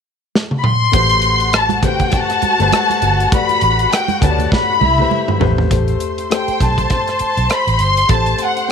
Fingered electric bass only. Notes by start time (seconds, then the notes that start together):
0.94 A1
2.43 muted fingered electric bass stroke
2.60 G1
3.02 G1
3.62 A1
4.22 D2
4.81 C2
5.41 A1
5.71 A1
6.48 muted fingered electric bass stroke
6.61 B1
7.20 muted fingered electric bass stroke
7.37 B1
7.67 A1
7.80 G1
8.09 A1